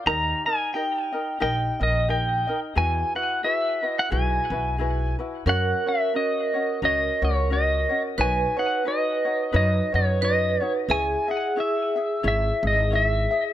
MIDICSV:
0, 0, Header, 1, 5, 480
1, 0, Start_track
1, 0, Tempo, 676437
1, 40, Time_signature, 4, 2, 24, 8
1, 9602, End_track
2, 0, Start_track
2, 0, Title_t, "Pedal steel guitar"
2, 0, Program_c, 0, 26
2, 51, Note_on_c, 0, 82, 106
2, 324, Note_off_c, 0, 82, 0
2, 327, Note_on_c, 0, 80, 94
2, 525, Note_on_c, 0, 79, 100
2, 529, Note_off_c, 0, 80, 0
2, 1000, Note_off_c, 0, 79, 0
2, 1009, Note_on_c, 0, 79, 90
2, 1294, Note_off_c, 0, 79, 0
2, 1298, Note_on_c, 0, 75, 85
2, 1476, Note_off_c, 0, 75, 0
2, 1492, Note_on_c, 0, 79, 86
2, 1841, Note_off_c, 0, 79, 0
2, 1970, Note_on_c, 0, 80, 95
2, 2240, Note_off_c, 0, 80, 0
2, 2243, Note_on_c, 0, 78, 82
2, 2444, Note_on_c, 0, 76, 92
2, 2448, Note_off_c, 0, 78, 0
2, 2735, Note_off_c, 0, 76, 0
2, 2735, Note_on_c, 0, 75, 92
2, 2833, Note_on_c, 0, 78, 81
2, 2834, Note_off_c, 0, 75, 0
2, 2923, Note_off_c, 0, 78, 0
2, 2925, Note_on_c, 0, 80, 84
2, 3656, Note_off_c, 0, 80, 0
2, 3898, Note_on_c, 0, 78, 96
2, 4176, Note_on_c, 0, 76, 89
2, 4178, Note_off_c, 0, 78, 0
2, 4371, Note_off_c, 0, 76, 0
2, 4374, Note_on_c, 0, 75, 92
2, 4819, Note_off_c, 0, 75, 0
2, 4861, Note_on_c, 0, 75, 91
2, 5139, Note_off_c, 0, 75, 0
2, 5142, Note_on_c, 0, 73, 85
2, 5337, Note_off_c, 0, 73, 0
2, 5343, Note_on_c, 0, 75, 89
2, 5687, Note_off_c, 0, 75, 0
2, 5825, Note_on_c, 0, 80, 104
2, 6095, Note_off_c, 0, 80, 0
2, 6098, Note_on_c, 0, 78, 94
2, 6295, Note_off_c, 0, 78, 0
2, 6301, Note_on_c, 0, 75, 99
2, 6777, Note_off_c, 0, 75, 0
2, 6785, Note_on_c, 0, 75, 91
2, 7036, Note_off_c, 0, 75, 0
2, 7064, Note_on_c, 0, 73, 85
2, 7259, Note_off_c, 0, 73, 0
2, 7271, Note_on_c, 0, 75, 94
2, 7612, Note_off_c, 0, 75, 0
2, 7743, Note_on_c, 0, 80, 101
2, 8022, Note_off_c, 0, 80, 0
2, 8026, Note_on_c, 0, 78, 89
2, 8220, Note_off_c, 0, 78, 0
2, 8233, Note_on_c, 0, 76, 91
2, 8704, Note_off_c, 0, 76, 0
2, 8712, Note_on_c, 0, 76, 96
2, 8987, Note_off_c, 0, 76, 0
2, 8992, Note_on_c, 0, 75, 82
2, 9184, Note_off_c, 0, 75, 0
2, 9192, Note_on_c, 0, 76, 87
2, 9533, Note_off_c, 0, 76, 0
2, 9602, End_track
3, 0, Start_track
3, 0, Title_t, "Vibraphone"
3, 0, Program_c, 1, 11
3, 3884, Note_on_c, 1, 70, 83
3, 5804, Note_on_c, 1, 71, 93
3, 5861, Note_off_c, 1, 70, 0
3, 7244, Note_off_c, 1, 71, 0
3, 7253, Note_on_c, 1, 71, 92
3, 7734, Note_on_c, 1, 68, 91
3, 7743, Note_off_c, 1, 71, 0
3, 9602, Note_off_c, 1, 68, 0
3, 9602, End_track
4, 0, Start_track
4, 0, Title_t, "Ukulele"
4, 0, Program_c, 2, 24
4, 41, Note_on_c, 2, 67, 69
4, 44, Note_on_c, 2, 63, 79
4, 48, Note_on_c, 2, 70, 80
4, 50, Note_on_c, 2, 75, 83
4, 313, Note_off_c, 2, 75, 0
4, 322, Note_off_c, 2, 67, 0
4, 322, Note_off_c, 2, 70, 0
4, 322, Note_on_c, 2, 75, 53
4, 323, Note_off_c, 2, 63, 0
4, 330, Note_on_c, 2, 70, 44
4, 338, Note_on_c, 2, 63, 43
4, 521, Note_off_c, 2, 75, 0
4, 523, Note_off_c, 2, 63, 0
4, 525, Note_off_c, 2, 70, 0
4, 526, Note_on_c, 2, 67, 57
4, 532, Note_on_c, 2, 63, 54
4, 536, Note_on_c, 2, 70, 60
4, 541, Note_on_c, 2, 75, 64
4, 790, Note_off_c, 2, 75, 0
4, 797, Note_off_c, 2, 70, 0
4, 798, Note_on_c, 2, 75, 54
4, 803, Note_off_c, 2, 63, 0
4, 804, Note_off_c, 2, 67, 0
4, 806, Note_on_c, 2, 70, 50
4, 811, Note_on_c, 2, 63, 47
4, 987, Note_off_c, 2, 63, 0
4, 991, Note_off_c, 2, 70, 0
4, 994, Note_on_c, 2, 67, 80
4, 995, Note_on_c, 2, 63, 77
4, 996, Note_off_c, 2, 75, 0
4, 999, Note_on_c, 2, 70, 81
4, 1005, Note_on_c, 2, 75, 88
4, 1267, Note_off_c, 2, 75, 0
4, 1275, Note_off_c, 2, 70, 0
4, 1275, Note_on_c, 2, 75, 53
4, 1278, Note_off_c, 2, 67, 0
4, 1279, Note_off_c, 2, 63, 0
4, 1284, Note_on_c, 2, 70, 48
4, 1290, Note_on_c, 2, 63, 43
4, 1473, Note_off_c, 2, 63, 0
4, 1473, Note_off_c, 2, 70, 0
4, 1477, Note_on_c, 2, 67, 66
4, 1478, Note_off_c, 2, 75, 0
4, 1482, Note_on_c, 2, 63, 66
4, 1482, Note_on_c, 2, 70, 67
4, 1489, Note_on_c, 2, 75, 73
4, 1746, Note_off_c, 2, 75, 0
4, 1754, Note_on_c, 2, 75, 53
4, 1756, Note_off_c, 2, 70, 0
4, 1760, Note_off_c, 2, 67, 0
4, 1762, Note_off_c, 2, 63, 0
4, 1765, Note_on_c, 2, 70, 48
4, 1770, Note_on_c, 2, 63, 43
4, 1954, Note_off_c, 2, 70, 0
4, 1954, Note_on_c, 2, 68, 73
4, 1957, Note_off_c, 2, 75, 0
4, 1957, Note_on_c, 2, 64, 83
4, 1958, Note_off_c, 2, 63, 0
4, 1961, Note_on_c, 2, 66, 70
4, 1964, Note_on_c, 2, 71, 75
4, 2227, Note_off_c, 2, 71, 0
4, 2233, Note_off_c, 2, 68, 0
4, 2235, Note_off_c, 2, 66, 0
4, 2236, Note_on_c, 2, 71, 52
4, 2240, Note_off_c, 2, 64, 0
4, 2243, Note_on_c, 2, 66, 48
4, 2248, Note_on_c, 2, 64, 46
4, 2432, Note_off_c, 2, 64, 0
4, 2434, Note_off_c, 2, 71, 0
4, 2437, Note_on_c, 2, 68, 58
4, 2439, Note_off_c, 2, 66, 0
4, 2441, Note_on_c, 2, 64, 59
4, 2447, Note_on_c, 2, 66, 66
4, 2449, Note_on_c, 2, 71, 60
4, 2706, Note_off_c, 2, 71, 0
4, 2711, Note_off_c, 2, 66, 0
4, 2712, Note_off_c, 2, 68, 0
4, 2715, Note_on_c, 2, 71, 53
4, 2720, Note_off_c, 2, 64, 0
4, 2720, Note_on_c, 2, 66, 45
4, 2728, Note_on_c, 2, 64, 43
4, 2910, Note_off_c, 2, 71, 0
4, 2911, Note_off_c, 2, 64, 0
4, 2913, Note_on_c, 2, 68, 75
4, 2914, Note_off_c, 2, 66, 0
4, 2919, Note_on_c, 2, 64, 81
4, 2923, Note_on_c, 2, 66, 80
4, 2926, Note_on_c, 2, 71, 81
4, 3193, Note_off_c, 2, 71, 0
4, 3198, Note_off_c, 2, 68, 0
4, 3199, Note_off_c, 2, 66, 0
4, 3201, Note_off_c, 2, 64, 0
4, 3202, Note_on_c, 2, 71, 55
4, 3208, Note_on_c, 2, 66, 46
4, 3216, Note_on_c, 2, 64, 46
4, 3391, Note_off_c, 2, 71, 0
4, 3393, Note_off_c, 2, 64, 0
4, 3394, Note_on_c, 2, 68, 62
4, 3399, Note_off_c, 2, 66, 0
4, 3402, Note_on_c, 2, 64, 66
4, 3408, Note_on_c, 2, 66, 61
4, 3410, Note_on_c, 2, 71, 67
4, 3672, Note_off_c, 2, 71, 0
4, 3678, Note_off_c, 2, 66, 0
4, 3678, Note_off_c, 2, 68, 0
4, 3681, Note_on_c, 2, 71, 60
4, 3682, Note_off_c, 2, 64, 0
4, 3686, Note_on_c, 2, 66, 53
4, 3693, Note_on_c, 2, 64, 45
4, 3872, Note_off_c, 2, 71, 0
4, 3873, Note_off_c, 2, 66, 0
4, 3874, Note_on_c, 2, 70, 70
4, 3878, Note_on_c, 2, 61, 74
4, 3879, Note_off_c, 2, 64, 0
4, 3882, Note_on_c, 2, 66, 82
4, 3882, Note_on_c, 2, 73, 79
4, 4152, Note_off_c, 2, 73, 0
4, 4157, Note_off_c, 2, 66, 0
4, 4158, Note_off_c, 2, 70, 0
4, 4160, Note_off_c, 2, 61, 0
4, 4160, Note_on_c, 2, 73, 53
4, 4166, Note_on_c, 2, 66, 50
4, 4172, Note_on_c, 2, 61, 40
4, 4353, Note_off_c, 2, 61, 0
4, 4356, Note_on_c, 2, 70, 55
4, 4358, Note_off_c, 2, 66, 0
4, 4360, Note_off_c, 2, 73, 0
4, 4361, Note_on_c, 2, 61, 61
4, 4366, Note_on_c, 2, 66, 63
4, 4372, Note_on_c, 2, 73, 58
4, 4630, Note_off_c, 2, 73, 0
4, 4639, Note_off_c, 2, 66, 0
4, 4639, Note_off_c, 2, 70, 0
4, 4639, Note_on_c, 2, 73, 50
4, 4642, Note_off_c, 2, 61, 0
4, 4647, Note_on_c, 2, 66, 49
4, 4654, Note_on_c, 2, 61, 42
4, 4835, Note_off_c, 2, 61, 0
4, 4838, Note_off_c, 2, 66, 0
4, 4840, Note_off_c, 2, 73, 0
4, 4842, Note_on_c, 2, 70, 68
4, 4843, Note_on_c, 2, 61, 79
4, 4847, Note_on_c, 2, 66, 76
4, 4853, Note_on_c, 2, 73, 81
4, 5113, Note_off_c, 2, 73, 0
4, 5122, Note_off_c, 2, 66, 0
4, 5122, Note_on_c, 2, 73, 50
4, 5123, Note_off_c, 2, 61, 0
4, 5123, Note_off_c, 2, 70, 0
4, 5131, Note_on_c, 2, 66, 47
4, 5137, Note_on_c, 2, 61, 47
4, 5317, Note_off_c, 2, 61, 0
4, 5322, Note_off_c, 2, 73, 0
4, 5323, Note_on_c, 2, 70, 66
4, 5326, Note_off_c, 2, 66, 0
4, 5326, Note_on_c, 2, 61, 63
4, 5336, Note_on_c, 2, 66, 62
4, 5336, Note_on_c, 2, 73, 66
4, 5591, Note_off_c, 2, 73, 0
4, 5599, Note_off_c, 2, 66, 0
4, 5600, Note_on_c, 2, 73, 52
4, 5603, Note_off_c, 2, 70, 0
4, 5604, Note_off_c, 2, 61, 0
4, 5607, Note_on_c, 2, 66, 48
4, 5613, Note_on_c, 2, 61, 47
4, 5799, Note_off_c, 2, 66, 0
4, 5801, Note_off_c, 2, 73, 0
4, 5801, Note_on_c, 2, 71, 74
4, 5802, Note_off_c, 2, 61, 0
4, 5804, Note_on_c, 2, 63, 80
4, 5808, Note_on_c, 2, 66, 80
4, 5811, Note_on_c, 2, 73, 79
4, 6070, Note_off_c, 2, 73, 0
4, 6079, Note_off_c, 2, 66, 0
4, 6079, Note_on_c, 2, 73, 58
4, 6082, Note_off_c, 2, 71, 0
4, 6084, Note_off_c, 2, 63, 0
4, 6087, Note_on_c, 2, 66, 50
4, 6094, Note_on_c, 2, 63, 44
4, 6280, Note_off_c, 2, 63, 0
4, 6280, Note_off_c, 2, 73, 0
4, 6281, Note_on_c, 2, 71, 60
4, 6284, Note_off_c, 2, 66, 0
4, 6288, Note_on_c, 2, 63, 62
4, 6294, Note_on_c, 2, 66, 64
4, 6295, Note_on_c, 2, 73, 65
4, 6554, Note_off_c, 2, 73, 0
4, 6560, Note_off_c, 2, 66, 0
4, 6562, Note_on_c, 2, 73, 57
4, 6563, Note_off_c, 2, 71, 0
4, 6566, Note_off_c, 2, 63, 0
4, 6569, Note_on_c, 2, 66, 50
4, 6577, Note_on_c, 2, 63, 42
4, 6755, Note_off_c, 2, 63, 0
4, 6759, Note_off_c, 2, 66, 0
4, 6759, Note_on_c, 2, 71, 77
4, 6761, Note_off_c, 2, 73, 0
4, 6764, Note_on_c, 2, 63, 86
4, 6767, Note_on_c, 2, 66, 76
4, 6769, Note_on_c, 2, 73, 81
4, 7033, Note_off_c, 2, 73, 0
4, 7041, Note_on_c, 2, 73, 56
4, 7042, Note_off_c, 2, 71, 0
4, 7044, Note_off_c, 2, 63, 0
4, 7044, Note_off_c, 2, 66, 0
4, 7052, Note_on_c, 2, 66, 48
4, 7057, Note_on_c, 2, 63, 45
4, 7242, Note_off_c, 2, 63, 0
4, 7242, Note_off_c, 2, 73, 0
4, 7245, Note_on_c, 2, 71, 60
4, 7247, Note_off_c, 2, 66, 0
4, 7251, Note_on_c, 2, 63, 63
4, 7256, Note_on_c, 2, 66, 67
4, 7261, Note_on_c, 2, 73, 74
4, 7516, Note_off_c, 2, 73, 0
4, 7524, Note_off_c, 2, 66, 0
4, 7525, Note_off_c, 2, 71, 0
4, 7525, Note_on_c, 2, 73, 54
4, 7528, Note_off_c, 2, 63, 0
4, 7533, Note_on_c, 2, 66, 52
4, 7540, Note_on_c, 2, 63, 49
4, 7717, Note_off_c, 2, 73, 0
4, 7725, Note_off_c, 2, 66, 0
4, 7726, Note_on_c, 2, 73, 66
4, 7728, Note_on_c, 2, 64, 80
4, 7729, Note_off_c, 2, 63, 0
4, 7731, Note_on_c, 2, 68, 75
4, 7734, Note_on_c, 2, 76, 81
4, 7996, Note_off_c, 2, 76, 0
4, 8004, Note_on_c, 2, 76, 57
4, 8005, Note_off_c, 2, 68, 0
4, 8006, Note_off_c, 2, 73, 0
4, 8007, Note_off_c, 2, 64, 0
4, 8014, Note_on_c, 2, 68, 47
4, 8020, Note_on_c, 2, 64, 39
4, 8201, Note_off_c, 2, 68, 0
4, 8202, Note_off_c, 2, 64, 0
4, 8202, Note_on_c, 2, 73, 61
4, 8204, Note_off_c, 2, 76, 0
4, 8210, Note_on_c, 2, 64, 60
4, 8210, Note_on_c, 2, 68, 63
4, 8217, Note_on_c, 2, 76, 66
4, 8476, Note_off_c, 2, 76, 0
4, 8484, Note_off_c, 2, 73, 0
4, 8485, Note_off_c, 2, 68, 0
4, 8485, Note_on_c, 2, 76, 54
4, 8488, Note_off_c, 2, 64, 0
4, 8494, Note_on_c, 2, 68, 49
4, 8499, Note_on_c, 2, 64, 41
4, 8674, Note_off_c, 2, 64, 0
4, 8677, Note_off_c, 2, 68, 0
4, 8680, Note_on_c, 2, 73, 74
4, 8681, Note_off_c, 2, 76, 0
4, 8682, Note_on_c, 2, 64, 82
4, 8685, Note_on_c, 2, 68, 78
4, 8690, Note_on_c, 2, 76, 91
4, 8961, Note_off_c, 2, 68, 0
4, 8963, Note_off_c, 2, 73, 0
4, 8964, Note_off_c, 2, 64, 0
4, 8968, Note_off_c, 2, 76, 0
4, 8970, Note_on_c, 2, 68, 50
4, 8978, Note_on_c, 2, 64, 44
4, 9157, Note_off_c, 2, 64, 0
4, 9158, Note_on_c, 2, 73, 68
4, 9162, Note_off_c, 2, 68, 0
4, 9165, Note_on_c, 2, 64, 65
4, 9171, Note_on_c, 2, 68, 68
4, 9176, Note_on_c, 2, 76, 69
4, 9434, Note_off_c, 2, 76, 0
4, 9442, Note_off_c, 2, 73, 0
4, 9443, Note_off_c, 2, 68, 0
4, 9443, Note_on_c, 2, 76, 50
4, 9446, Note_off_c, 2, 64, 0
4, 9451, Note_on_c, 2, 68, 48
4, 9458, Note_on_c, 2, 64, 47
4, 9602, Note_off_c, 2, 64, 0
4, 9602, Note_off_c, 2, 68, 0
4, 9602, Note_off_c, 2, 76, 0
4, 9602, End_track
5, 0, Start_track
5, 0, Title_t, "Upright bass"
5, 0, Program_c, 3, 32
5, 44, Note_on_c, 3, 39, 104
5, 225, Note_off_c, 3, 39, 0
5, 1004, Note_on_c, 3, 34, 98
5, 1185, Note_off_c, 3, 34, 0
5, 1282, Note_on_c, 3, 34, 98
5, 1723, Note_off_c, 3, 34, 0
5, 1962, Note_on_c, 3, 40, 101
5, 2144, Note_off_c, 3, 40, 0
5, 2922, Note_on_c, 3, 35, 103
5, 3104, Note_off_c, 3, 35, 0
5, 3195, Note_on_c, 3, 35, 100
5, 3639, Note_off_c, 3, 35, 0
5, 3874, Note_on_c, 3, 42, 102
5, 4059, Note_off_c, 3, 42, 0
5, 4840, Note_on_c, 3, 37, 97
5, 5023, Note_off_c, 3, 37, 0
5, 5124, Note_on_c, 3, 37, 99
5, 5565, Note_off_c, 3, 37, 0
5, 5806, Note_on_c, 3, 35, 99
5, 5987, Note_off_c, 3, 35, 0
5, 6771, Note_on_c, 3, 42, 108
5, 6951, Note_off_c, 3, 42, 0
5, 7054, Note_on_c, 3, 42, 107
5, 7492, Note_off_c, 3, 42, 0
5, 7724, Note_on_c, 3, 37, 105
5, 7907, Note_off_c, 3, 37, 0
5, 8686, Note_on_c, 3, 32, 103
5, 8868, Note_off_c, 3, 32, 0
5, 8961, Note_on_c, 3, 32, 108
5, 9404, Note_off_c, 3, 32, 0
5, 9602, End_track
0, 0, End_of_file